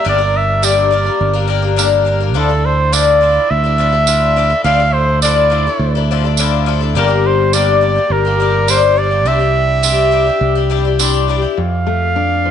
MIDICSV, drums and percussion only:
0, 0, Header, 1, 2, 480
1, 0, Start_track
1, 0, Tempo, 573614
1, 55, Time_signature, 4, 2, 24, 8
1, 6296, Tempo, 580271
1, 10419, End_track
2, 0, Start_track
2, 0, Title_t, "Drums"
2, 528, Note_on_c, 9, 54, 93
2, 612, Note_off_c, 9, 54, 0
2, 1496, Note_on_c, 9, 54, 97
2, 1579, Note_off_c, 9, 54, 0
2, 2452, Note_on_c, 9, 54, 91
2, 2536, Note_off_c, 9, 54, 0
2, 3405, Note_on_c, 9, 54, 100
2, 3489, Note_off_c, 9, 54, 0
2, 4369, Note_on_c, 9, 54, 99
2, 4452, Note_off_c, 9, 54, 0
2, 5332, Note_on_c, 9, 54, 95
2, 5416, Note_off_c, 9, 54, 0
2, 6303, Note_on_c, 9, 54, 97
2, 6385, Note_off_c, 9, 54, 0
2, 7254, Note_on_c, 9, 54, 98
2, 7337, Note_off_c, 9, 54, 0
2, 8206, Note_on_c, 9, 54, 91
2, 8288, Note_off_c, 9, 54, 0
2, 9167, Note_on_c, 9, 54, 95
2, 9250, Note_off_c, 9, 54, 0
2, 10419, End_track
0, 0, End_of_file